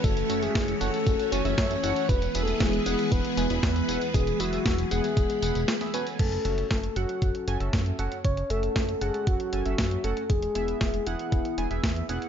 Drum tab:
CC |----------------|----------------|----------------|x---------------|
HH |xxxxxxxxxxxxxxxx|xxxxxxxxxxxxxxxx|xxxxxxxxxxxxxxxx|xxxxxxxxxxxxxxxx|
TB |xxxxxxxxxxxxxxxx|xxxxxxxxxxxxxxxx|xxxxxxxxxxxxxxxx|----------------|
SD |----o-------o---|----o-------o---|----o-------oo--|----o-------o---|
BD |o---o---o---o---|o---o---o---o---|o---o---o-------|o---o---o---o---|

CC |----------------|----------------|
HH |xxxxxxxxxxxxxxxx|xxxxxxxxxxxxxxxx|
TB |----------------|----------------|
SD |----o-------o---|----o-------o---|
BD |o---o---o---o---|o---o---o---o---|